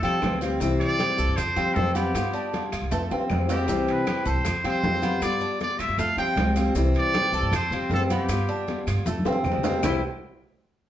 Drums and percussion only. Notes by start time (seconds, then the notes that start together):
0.03 high conga, high timbale, maracas
0.22 high bongo, low bongo, high conga, high timbale, low timbale, claves, maracas
0.41 high bongo, high timbale, maracas
0.60 high bongo, high conga, maracas
0.80 high conga, high timbale, maracas
0.99 high bongo, high conga, high timbale, low timbale, claves, maracas
1.18 high bongo, high conga, maracas
1.37 high bongo, high conga, low conga, high timbale, claves, maracas
1.57 high bongo, high conga, high timbale, maracas
1.76 high bongo, low bongo, high conga, low timbale, maracas
1.95 high bongo, high conga, high timbale, maracas
2.15 high bongo, high conga, high timbale, claves, maracas
2.34 high conga, maracas
2.54 high bongo, high conga, high timbale, low timbale, maracas
2.72 high bongo, high conga, high timbale, claves, maracas
2.91 high bongo, high conga, high timbale, maracas
3.11 high conga, high timbale, maracas
3.30 high bongo, low bongo, high conga, low timbale, claves, maracas
3.49 high bongo, low timbale, maracas
3.68 high bongo, maracas
3.88 high conga, high timbale, maracas
4.07 high bongo, high conga, high timbale, low timbale, claves, maracas
4.26 high bongo, high conga, maracas
4.45 high bongo, high conga, low conga, high timbale, claves, maracas
4.64 high bongo, high conga, high timbale, maracas
4.84 high bongo, low bongo, high conga, low timbale, maracas
5.02 high bongo, high conga, high timbale, maracas
5.22 high bongo, high conga, high timbale, claves, maracas
5.41 high conga, maracas
5.60 high bongo, high conga, high timbale, low timbale, maracas
5.80 high bongo, high conga, high timbale, claves, maracas
5.99 high bongo, high conga, maracas
6.18 high conga, high timbale, maracas
6.37 high bongo, low bongo, high conga, high timbale, low timbale, claves, maracas
6.56 high bongo, high conga, high timbale, maracas
6.75 high bongo, maracas
6.94 high conga, high timbale, maracas
7.14 high bongo, high conga, high timbale, low timbale, claves, maracas
7.33 high bongo, high conga, maracas
7.53 high bongo, high conga, low conga, high timbale, claves, maracas
7.71 high bongo, high conga, low conga, high timbale, maracas
7.91 high bongo, low bongo, high conga, low timbale, maracas
8.10 high bongo, high conga, high timbale, maracas
8.29 high bongo, high timbale, claves, maracas
8.48 high conga, maracas
8.68 high bongo, high conga, high timbale, low timbale, maracas
8.87 high bongo, high conga, high timbale, claves, maracas
9.06 high bongo, high conga, maracas
9.19 high conga
9.25 high bongo, high timbale, maracas
9.33 high conga
9.45 low conga, claves, maracas
9.52 low timbale
9.58 low conga
9.63 low bongo, low timbale, maracas
9.71 low conga
9.83 low bongo, low conga, low timbale, claves, maracas